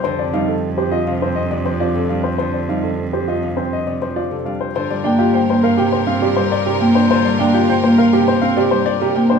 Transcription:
<<
  \new Staff \with { instrumentName = "Grand piano" } { \time 4/4 \key f \mixolydian \tempo 4 = 102 c''16 d''16 f''16 r8 c''16 ees''16 f''16 c''16 ees''16 d''16 c''16 d''16 a'16 f''16 c''16 | c''16 d''16 f''16 r8 c''16 ees''16 f''16 c''16 ees''16 d''16 c''16 d''16 a'16 f''16 c''16 | \key g \minor c''16 d''16 g''16 g'16 g''16 c''16 f''16 g''16 c''16 f''16 d''16 c''16 d''16 bes'16 g''16 c''16 | c''16 d''16 g''16 g'16 g''16 c''16 f''16 g''16 c''16 f''16 d''16 c''16 d''16 bes'16 g''16 c''16 | }
  \new Staff \with { instrumentName = "String section" } { \time 4/4 \key f \mixolydian r1 | r1 | \key g \minor <f' bes'>1~ | <f' bes'>2.~ <f' bes'>8. r16 | }
  \new Staff \with { instrumentName = "Grand piano" } { \time 4/4 \key f \mixolydian r8 ees'16 a'16 r16 g'16 f'16 r16 c'16 r8. f'16 r16 d'16 r16 | r8 ees'16 a'16 r16 g'16 f'16 r16 c'16 r8. f'16 r16 d'16 r16 | \key g \minor r8 d'16 f'16 c''16 r16 bes'16 g'16 r16 c'16 g'16 r8 g'16 r16 d'16 | r8 d'16 f'16 c''16 r16 bes'16 g'16 r16 c'16 g'16 r8 g'16 r16 d'16 | }
  \new Staff \with { instrumentName = "Harp" } { \clef bass \time 4/4 \key f \mixolydian <d f g>8 g4~ g16 c8. c16 f8 c16 g8 | d8 g4~ g16 c8. c16 f8 c16 g8 | \key g \minor d16 g16 bes8. bes8 c8. c16 g8 c16 bes8 | d16 g16 bes8. bes8 c8. c16 g8 c16 bes8 | }
  \new Staff \with { instrumentName = "Cello" } { \clef bass \time 4/4 \key f \mixolydian f,1~ | f,1 | \key g \minor g,1~ | g,1 | }
>>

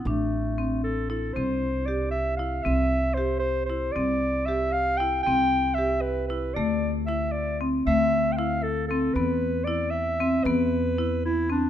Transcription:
<<
  \new Staff \with { instrumentName = "Clarinet" } { \time 5/8 \key c \major \tempo 4 = 115 a4. a'8 a'8 | c''4 d''8 e''8 f''8 | e''4 c''8 c''8 c''8 | d''4 e''8 f''8 g''8 |
g''4 e''8 b'8 b'8 | d''4 e''8 d''8 r8 | e''8.~ e''32 g''32 f''8 a'8 a'8 | b'4 d''8 e''4 |
b'4. e'8 d'8 | }
  \new Staff \with { instrumentName = "Marimba" } { \time 5/8 \key c \major d'4 c'4 e'8 | c'4 g'4 e'8 | c'4 g'4 e'8 | c'4 g'4 e'8 |
c'4 g'4 e'8 | a4 e'4 c'8 | a4 e'4 c'8 | b4 e'4 c'8 |
b4 e'4 c'8 | }
  \new Staff \with { instrumentName = "Upright bass" } { \clef bass \time 5/8 \key c \major a,,2~ a,,8 | c,2~ c,8 | c,2~ c,8 | c,2~ c,8 |
c,2~ c,8 | d,2~ d,8 | d,2~ d,8 | e,2~ e,8 |
e,2~ e,8 | }
>>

